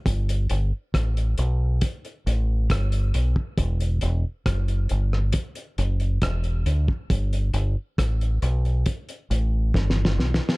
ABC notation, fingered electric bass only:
X:1
M:4/4
L:1/16
Q:1/4=68
K:G
V:1 name="Fingered electric bass" clef=bass
G,,,2 G,,, z A,,,2 B,,,2 z2 A,,,2 G,,,2 B,,, z | E,,,2 E,,, z F,,,2 G,,,2 z2 F,,,2 E,,,2 D,, z | G,,,2 G,,, z A,,,2 B,,,2 z2 A,,,2 G,,,2 B,,, z |]